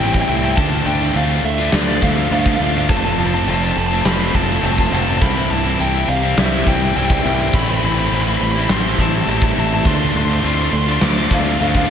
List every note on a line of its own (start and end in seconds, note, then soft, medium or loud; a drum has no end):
0.00 0.25 A1 loud
0.00 0.56 A2 medium
0.00 0.27 E3 loud
0.00 0.56 E3 medium
0.00 0.58 G3 medium
0.00 0.29 A3 medium
0.00 0.60 C4 medium
0.00 0.29 C4 loud
0.00 0.56 E4 medium
0.00 0.29 E4 loud
0.00 0.55 C5 medium
0.00 0.55 G5 medium
0.00 5.18 A5 medium
0.00 open hi-hat medium
0.06 0.13 G5 medium
0.14 0.29 A3 medium
0.14 0.30 C4 medium
0.14 0.30 E4 medium
0.14 0.21 G5 medium
0.14 kick medium
0.22 0.28 G5 medium
0.28 0.54 C2 medium
0.28 0.56 E3 medium
0.28 0.44 A3 medium
0.28 0.44 C4 medium
0.28 0.41 E4 medium
0.28 0.36 G5 medium
0.37 0.44 G5 medium
0.43 0.57 A3 medium
0.43 0.58 C4 medium
0.43 0.56 E4 medium
0.43 0.51 G5 medium
0.51 0.56 G5 medium
0.56 0.83 D2 loud
0.56 1.01 D3 loud
0.56 0.73 A3 loud
0.56 0.71 D4 loud
0.56 5.18 F4 medium
0.56 0.71 F4 loud
0.56 2.88 D5 medium
0.56 0.86 A5 loud
0.56 2.88 C6 medium
0.56 kick loud
0.56 open hi-hat medium
0.72 1.02 A3 medium
0.72 1.01 D4 medium
0.72 1.00 F4 medium
0.85 1.12 D2 medium
0.85 1.72 D3 medium
0.85 1.13 D3 medium
0.85 1.15 A3 medium
0.85 1.15 D4 loud
0.85 1.16 G5 medium
0.90 1.17 F4 medium
1.01 1.15 A3 medium
1.01 1.15 D4 medium
1.01 1.16 F4 medium
1.14 1.40 D2 loud
1.14 1.43 D3 loud
1.14 1.45 A3 medium
1.14 2.01 C4 medium
1.14 1.44 D4 loud
1.14 1.45 F4 loud
1.14 1.45 F5 loud
1.14 open hi-hat medium
1.29 1.45 A3 medium
1.29 1.44 D4 medium
1.29 1.45 F4 medium
1.43 1.69 D2 medium
1.43 1.88 D3 medium
1.43 1.60 A3 loud
1.43 1.59 D4 medium
1.43 1.58 F4 medium
1.43 1.73 E5 medium
1.43 muted distorted electric guitar stroke medium
1.59 1.89 A3 medium
1.59 1.89 D4 medium
1.59 1.87 F4 medium
1.72 1.99 D2 loud
1.72 2.89 D3 medium
1.72 2.03 D5 loud
1.72 snare loud
1.72 open hi-hat medium
1.88 2.01 A3 medium
1.88 2.02 D4 medium
1.88 2.02 F4 medium
2.01 2.28 D2 loud
2.01 2.30 D3 medium
2.01 2.18 A3 medium
2.01 3.46 C4 medium
2.01 2.17 D4 medium
2.01 2.16 F4 medium
2.01 2.31 F5 medium
2.01 kick medium
2.17 2.31 A3 medium
2.17 2.32 D4 medium
2.17 2.32 F4 medium
2.31 2.57 D2 loud
2.31 2.60 D3 medium
2.31 2.60 A3 medium
2.31 2.61 D4 loud
2.31 2.61 F4 loud
2.31 2.39 F5 medium
2.31 open hi-hat medium
2.40 2.47 F5 medium
2.46 2.60 A3 medium
2.46 2.61 D4 medium
2.46 2.62 F4 medium
2.46 2.54 F5 medium
2.46 kick medium
2.55 2.62 F5 medium
2.60 2.91 D2 loud
2.60 2.88 D3 medium
2.60 2.75 A3 medium
2.60 2.74 D4 medium
2.60 2.73 F4 medium
2.60 2.70 F5 medium
2.70 2.78 F5 medium
2.74 2.88 A3 medium
2.74 2.88 D4 medium
2.74 2.88 F4 medium
2.74 2.86 F5 medium
2.88 3.15 F1 medium
2.88 4.34 F2 medium
2.88 3.33 F3 loud
2.88 3.05 A3 loud
2.88 3.05 C4 loud
2.88 3.03 F4 loud
2.88 5.20 C5 medium
2.88 2.96 A5 loud
2.88 5.20 C6 medium
2.88 kick loud
2.88 open hi-hat medium
2.97 3.04 A5 medium
3.04 3.34 A3 medium
3.04 3.33 C4 medium
3.04 3.32 F4 medium
3.04 3.12 A5 medium
3.13 3.19 A5 medium
3.17 3.44 F1 medium
3.17 3.46 F3 medium
3.17 4.04 F3 medium
3.17 3.47 A3 medium
3.17 3.49 C4 medium
3.17 3.49 F4 medium
3.17 3.26 A5 medium
3.27 3.34 A5 medium
3.33 3.47 A3 medium
3.33 3.48 C4 medium
3.33 3.48 F4 medium
3.33 3.42 A5 loud
3.42 3.49 A5 medium
3.47 3.73 F1 medium
3.47 3.76 F3 loud
3.47 3.77 A3 medium
3.47 3.78 C4 loud
3.47 3.78 F4 loud
3.47 3.55 A5 medium
3.47 open hi-hat medium
3.56 3.63 A5 medium
3.61 3.76 A3 medium
3.61 3.77 C4 medium
3.61 3.76 F4 medium
3.61 3.72 A5 medium
3.72 4.02 F1 medium
3.72 3.78 A5 medium
3.77 4.21 F3 medium
3.77 3.91 A3 medium
3.77 3.92 C4 medium
3.77 3.90 F4 loud
3.77 3.86 A5 medium
3.77 muted distorted electric guitar stroke soft
3.87 3.94 A5 medium
3.91 4.20 A3 medium
3.91 4.21 C4 medium
3.91 4.19 F4 medium
3.91 4.01 A5 medium
4.02 4.31 F1 medium
4.02 5.22 F3 medium
4.02 4.09 A5 medium
4.02 4.32 B5 loud
4.02 snare loud
4.02 open hi-hat medium
4.20 4.34 A3 medium
4.20 4.35 C4 medium
4.20 4.35 F4 medium
4.34 4.60 F1 medium
4.34 4.61 F3 medium
4.34 4.48 A3 medium
4.34 4.48 C4 medium
4.34 4.47 F4 medium
4.34 4.64 A5 medium
4.34 kick medium
4.48 4.62 A3 medium
4.48 4.63 C4 medium
4.48 4.63 F4 medium
4.62 4.89 F1 loud
4.62 4.90 F3 loud
4.62 4.91 A3 loud
4.62 4.92 C4 loud
4.62 4.92 F4 loud
4.62 4.73 A5 loud
4.62 open hi-hat medium
4.73 4.80 A5 medium
4.78 4.93 A3 medium
4.78 4.94 C4 medium
4.78 4.95 F4 medium
4.78 4.86 A5 medium
4.78 kick medium
4.78 snare soft
4.86 4.94 A5 medium
4.91 5.18 F1 loud
4.91 5.19 F3 medium
4.91 5.06 A3 medium
4.91 5.06 C4 medium
4.91 5.05 F4 medium
4.91 5.03 A5 medium
5.03 5.21 C4 medium
5.03 5.19 F4 medium
5.03 5.09 A5 medium
5.08 5.20 A3 medium
5.08 5.17 A5 medium
5.18 5.64 C3 loud
5.18 5.79 E3 loud
5.18 5.36 G3 loud
5.18 5.35 C4 loud
5.18 5.34 E4 loud
5.18 5.25 A5 medium
5.18 open hi-hat medium
5.22 5.47 C2 loud
5.22 7.52 E4 medium
5.22 9.84 C5 medium
5.22 7.53 G5 medium
5.22 5.52 B5 loud
5.22 7.54 B5 medium
5.22 kick loud
5.35 5.65 G3 medium
5.35 5.65 C4 medium
5.35 5.63 E4 medium
5.49 5.76 C2 medium
5.49 5.79 E3 medium
5.49 6.36 E3 medium
5.49 5.80 G3 medium
5.49 5.80 C4 medium
5.49 5.81 E4 medium
5.49 5.80 A5 loud
5.64 5.80 G3 medium
5.64 5.80 C4 medium
5.64 5.81 E4 medium
5.79 6.05 C2 medium
5.79 6.38 C3 loud
5.79 6.07 E3 loud
5.79 6.08 G3 medium
5.79 6.09 C4 loud
5.79 6.10 E4 loud
5.79 6.10 G5 loud
5.79 open hi-hat medium
5.94 6.09 G3 medium
5.94 6.09 C4 medium
5.94 6.09 E4 medium
6.08 6.34 C2 medium
6.08 6.52 E3 medium
6.08 6.23 G3 medium
6.08 6.23 C4 medium
6.08 6.21 E4 medium
6.08 6.39 F5 medium
6.08 muted distorted electric guitar stroke soft
6.22 6.52 G3 medium
6.22 6.52 C4 medium
6.22 6.50 E4 medium
6.37 6.63 C2 loud
6.37 7.54 E3 medium
6.37 6.66 E5 loud
6.37 snare loud
6.37 open hi-hat medium
6.51 6.66 G3 medium
6.51 6.67 C4 medium
6.51 6.67 E4 medium
6.66 6.92 C2 medium
6.66 6.94 E3 medium
6.66 6.81 G3 medium
6.66 6.81 C4 medium
6.66 6.79 E4 medium
6.66 6.95 G5 loud
6.66 kick medium
6.80 6.94 G3 medium
6.80 6.95 C4 medium
6.80 6.95 E4 medium
6.95 7.22 C2 loud
6.95 7.52 C3 loud
6.95 7.23 E3 medium
6.95 7.23 G3 loud
6.95 7.25 C4 loud
6.95 7.25 E4 loud
6.95 7.04 G5 loud
6.95 open hi-hat medium
7.05 7.11 G5 medium
7.09 7.24 G3 medium
7.09 7.25 C4 medium
7.09 7.26 E4 medium
7.09 7.19 G5 medium
7.09 kick loud
7.09 snare soft
7.19 7.26 G5 medium
7.24 7.51 C2 loud
7.24 7.52 E3 medium
7.24 7.40 G3 medium
7.24 7.40 C4 medium
7.24 7.38 E4 medium
7.24 7.34 G5 medium
7.35 7.40 G5 medium
7.39 7.53 G3 medium
7.39 7.54 C4 medium
7.39 7.52 E4 medium
7.39 7.47 G5 medium
7.48 7.56 G5 medium
7.53 7.79 A1 loud
7.53 7.97 A2 loud
7.53 7.98 E3 loud
7.53 7.69 A3 loud
7.53 7.68 C4 loud
7.53 9.84 E4 medium
7.53 7.66 E4 loud
7.53 9.85 G5 medium
7.53 9.84 A5 medium
7.53 7.62 B5 loud
7.53 kick loud
7.53 crash loud
7.62 7.69 B5 medium
7.67 7.97 A3 medium
7.67 7.97 C4 medium
7.67 7.95 E4 medium
7.67 7.77 B5 medium
7.77 7.84 B5 medium
7.82 8.08 A1 medium
7.82 8.67 E3 medium
7.82 8.12 E3 medium
7.82 8.13 A3 medium
7.82 8.14 C4 medium
7.82 8.14 E4 medium
7.82 7.92 B5 medium
7.92 8.11 E4 medium
7.92 7.99 B5 medium
7.97 8.11 A3 medium
7.97 8.11 C4 medium
7.97 8.06 B5 medium
8.07 8.69 A2 medium
8.07 8.38 E3 loud
8.07 8.14 B5 medium
8.11 8.38 A1 medium
8.11 8.40 A3 loud
8.11 8.40 C4 loud
8.11 8.40 E4 loud
8.11 8.21 B5 loud
8.11 open hi-hat medium
8.21 8.29 B5 medium
8.26 8.42 A3 medium
8.26 8.42 C4 medium
8.26 8.41 E4 medium
8.26 8.37 B5 medium
8.38 8.67 A1 medium
8.38 8.84 E3 medium
8.38 9.25 G3 medium
8.38 8.55 A3 medium
8.38 8.55 C4 loud
8.38 8.53 E4 loud
8.38 8.44 B5 medium
8.42 8.51 B5 medium
8.42 muted distorted electric guitar stroke soft
8.52 8.84 A3 medium
8.52 8.83 C4 medium
8.52 8.82 E4 medium
8.52 8.59 B5 medium
8.59 8.67 B5 medium
8.68 8.96 A1 medium
8.68 9.85 E3 medium
8.68 9.01 C6 loud
8.68 snare loud
8.68 open hi-hat medium
8.83 8.96 A3 medium
8.83 8.98 C4 medium
8.83 8.97 E4 medium
8.97 9.24 A1 loud
8.97 9.25 E3 medium
8.97 9.12 A3 medium
8.97 9.12 C4 medium
8.97 9.10 E4 loud
8.97 9.28 A5 medium
8.97 kick medium
9.02 9.30 E4 medium
9.11 9.26 A3 medium
9.11 9.26 C4 medium
9.11 9.26 E4 medium
9.25 9.53 A1 medium
9.25 9.83 A2 medium
9.25 9.53 E3 loud
9.25 9.86 G3 medium
9.25 9.55 A3 medium
9.25 9.55 C4 loud
9.25 9.55 E4 loud
9.25 open hi-hat medium
9.29 9.41 E4 loud
9.29 9.37 A5 medium
9.37 9.44 A5 medium
9.42 9.57 A3 medium
9.42 9.58 C4 medium
9.42 9.58 E4 medium
9.42 9.51 A5 medium
9.42 kick medium
9.42 snare soft
9.52 9.83 E3 medium
9.52 9.70 A3 medium
9.52 9.70 C4 medium
9.52 9.59 A5 medium
9.56 9.83 A1 loud
9.56 9.68 E4 medium
9.56 9.66 A5 medium
9.66 9.85 C4 medium
9.66 9.83 E4 medium
9.66 9.74 A5 medium
9.71 9.85 A3 medium
9.71 9.82 A5 medium
9.83 10.12 D2 medium
9.83 10.29 D3 loud
9.83 10.01 A3 loud
9.83 9.99 D4 loud
9.83 11.90 F4 medium
9.83 9.99 F4 loud
9.83 11.90 D5 medium
9.83 9.90 A5 medium
9.83 11.90 A5 medium
9.83 11.90 C6 medium
9.83 kick loud
9.83 open hi-hat medium
9.87 9.94 C6 loud
9.95 10.01 C6 medium
10.00 10.30 A3 medium
10.00 10.29 D4 medium
10.00 10.28 F4 medium
10.00 10.09 C6 loud
10.09 10.16 C6 medium
10.14 10.41 D2 medium
10.14 10.42 D3 medium
10.14 11.01 D3 medium
10.14 10.44 A3 medium
10.14 10.44 D4 medium
10.14 10.46 F4 medium
10.14 10.24 C6 loud
10.25 10.44 F4 medium
10.25 10.32 C6 medium
10.30 10.43 A3 medium
10.30 10.42 D4 medium
10.30 10.39 C6 loud
10.40 10.70 D3 loud
10.40 10.72 A3 loud
10.40 10.47 C6 medium
10.44 10.70 D2 medium
10.44 11.31 C4 medium
10.44 10.72 D4 loud
10.44 10.73 F4 loud
10.44 10.54 C6 loud
10.44 open hi-hat medium
10.55 10.73 F4 medium
10.55 10.61 C6 medium
10.60 10.73 A3 medium
10.60 10.72 D4 medium
10.60 10.69 C6 loud
10.70 10.99 D2 medium
10.70 11.16 D3 loud
10.70 10.87 A3 medium
10.70 10.87 D4 loud
10.70 10.86 F4 loud
10.70 10.77 C6 medium
10.70 muted distorted electric guitar stroke medium
10.77 10.83 C6 loud
10.84 11.17 D4 medium
10.84 11.16 F4 medium
10.84 10.91 C6 medium
10.89 11.17 A3 medium
10.89 10.98 C6 medium
10.99 11.28 D2 loud
10.99 11.90 D3 medium
10.99 11.04 C6 medium
10.99 snare loud
10.99 open hi-hat medium
11.04 11.33 D6 loud
11.17 11.31 A3 medium
11.17 11.31 D4 medium
11.17 11.31 F4 medium
11.31 11.57 D2 loud
11.31 11.58 D3 medium
11.31 11.46 A3 medium
11.31 11.90 C4 medium
11.31 11.45 D4 medium
11.31 11.44 F4 medium
11.31 11.59 F5 medium
11.31 kick medium
11.45 11.59 A3 medium
11.45 11.60 D4 medium
11.45 11.60 F4 medium
11.60 11.86 D2 loud
11.60 11.87 D3 loud
11.60 11.88 A3 loud
11.60 11.89 D4 loud
11.60 11.89 F4 loud
11.60 11.67 F5 loud
11.60 open hi-hat medium
11.67 11.75 F5 medium
11.74 11.89 A3 medium
11.74 11.89 D4 medium
11.74 11.90 F4 medium
11.74 11.82 F5 medium
11.74 kick medium
11.74 snare soft
11.83 11.90 F5 medium